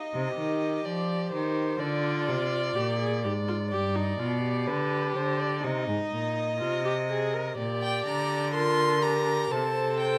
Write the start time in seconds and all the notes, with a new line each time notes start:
Already playing: D#4 D#5
0.13 C3
0.37 D#3 G4
0.85 F3 D5
1.32 D#3 C5
1.80 D3 F4 D5
2.28 C3
2.76 A#2 G4
3.00 G#4
3.23 G#2 G4
3.48 F4
3.71 G2 G4 D5
3.95 D#4
4.19 B2 F4
4.43 G4
4.67 D3 B4
5.15 D3 C5
5.39 D5
5.64 C3 D#4 D#5
5.88 G#2
6.12 A#2
6.61 C3 F4
6.85 G4
7.09 G#4
7.34 A#4
7.58 A#2 G4 D5
7.82 G5
8.06 D3 A#5
8.54 F4 A#4 C6
9.03 G4 A#5
9.51 C3 A4 C5 A5
10.00 G5